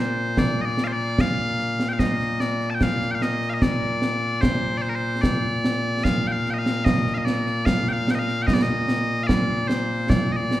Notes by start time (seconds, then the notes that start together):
Already playing: A#2 A#3
0.00 C5
0.37 D5, concert bass drum, snare
0.61 D5 D#5
0.78 snare
0.84 C5 F5
0.93 D5
1.18 F5, concert bass drum, snare
1.59 snare
1.80 snare
1.89 G5
1.93 F5
1.99 D#5, concert bass drum, snare
2.20 snare
2.40 D5, snare
2.61 snare
2.70 A5
2.75 G5
2.81 F5, concert bass drum, snare
3.02 snare
3.11 F5 G5
3.22 D#5, snare
3.42 snare
3.50 F5
3.54 D#5
3.62 D5, concert bass drum, snare
4.02 snare
4.41 C5, concert bass drum, snare
4.78 D5
4.82 C5
4.89 A#4
4.95 C5
5.22 D5, concert bass drum, snare
5.64 snare
6.04 F5, concert bass drum, snare
6.27 G5
6.32 F5
6.46 snare
6.50 D#5 G5
6.59 F5
6.66 snare
6.85 D#5, concert bass drum, snare
7.07 snare
7.14 D#5 F5
7.25 D5, snare
7.47 snare
7.66 F5, concert bass drum, snare
7.87 G5, snare
7.93 F5
8.08 G5, snare
8.15 D#5
8.19 F5
8.28 snare
8.42 G5
8.47 D#5, concert bass drum, snare
8.53 D5
8.62 D#5
8.88 snare
9.23 D5 F5
9.29 concert bass drum, snare
9.68 C5, snare
10.10 D5, concert bass drum, snare
10.32 D#5
10.36 D5
10.51 snare